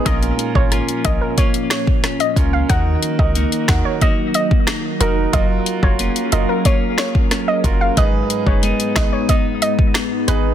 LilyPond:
<<
  \new Staff \with { instrumentName = "Synth pluck" } { \time 4/4 \key ees \minor \tempo 4 = 91 ees''16 r8 des''16 r8 ees''16 bes'16 des''16 r16 des''16 r8 ees''16 r16 f''16 | ges''16 r8 ees''16 r8 ges''16 des''16 ees''16 r16 ees''16 r8. bes'16 r16 | ees''16 r8 des''16 r8 ees''16 bes'16 des''16 r16 des''16 r8 ees''16 r16 f''16 | ees''16 r8 des''16 r8 ees''16 des''16 ees''16 r16 ees''16 r8. ces''16 r16 | }
  \new Staff \with { instrumentName = "Grand piano" } { \time 4/4 \key ees \minor <des' f' bes'>8. <des' f' bes'>8. <des' f' bes'>8 r4. <des' f' bes'>8 | <ees' ges' bes'>8. <ees' ges' bes'>8. <ees' ges' bes'>8 r4. <ees' ges' bes'>8 | <f' ges' bes'>8. <f' ges' bes'>8. <f' ges' bes'>8 r4. <f' ges' bes'>8 | <ees' aes' ces''>8. <ees' aes' ces''>8. <ees' aes' ces''>8 r4. <ees' aes' ces''>8 | }
  \new Staff \with { instrumentName = "Ambient pad" } { \time 4/4 \key ees \minor << { <f des'>1 | <ges ees'>1 | <des' bes' f''>1 | <aes ees'>1 | } \\ { bes1~ | bes1 | aes'1 | ces'1 | } >> }
  \new Staff \with { instrumentName = "Clean electric guitar" } { \time 4/4 \key ees \minor bes,4 <bes des' f'>4 <bes des' f'>4 des'4 | ees4 <bes ees' ges'>4 <bes ees' ges'>4 ees'4 | ges4 <bes des' f'>4 <bes des' f'>4 des'4 | aes,4 <aes ces' ees'>4 <aes ces' ees'>4 ces'4 | }
  \new Staff \with { instrumentName = "808-style bass" } { \clef bass \time 4/4 \key ees \minor bes,,8 r16 aes,,8 r16 bes,,16 r4. r16 des,8 | ees,8 r16 des,8 r16 ees,16 r4. r16 f,,8 | ges,,8 r16 f,,8 r16 ges,,16 r4. r16 ges,,8 | aes,,8 r16 ges,,8 r16 aes,,16 r4. r16 aes,,8 | }
  \new DrumStaff \with { instrumentName = "Drums" } \drummode { \time 4/4 <hh bd>16 hh16 hh16 bd16 <hh ss>16 hh16 <hh bd>8 <hh bd>16 hh16 <hh ss sn>16 bd16 <hh ss sn>16 hh16 <hh bd>8 | <hh bd>8 hh16 bd16 hh16 hh16 <hh bd ss sn>8 <hh bd>8 hh16 bd16 <hh ss sn>8 hh8 | <hh bd>8 hh16 bd16 hh16 hh16 hh8 <hh bd>8 <hh ss sn>16 bd16 <hh ss sn>8 <hh bd>8 | <hh bd>8 hh16 bd16 hh16 hh16 <hh bd ss sn>8 <hh bd>8 hh16 bd16 <hh ss sn>8 hh8 | }
>>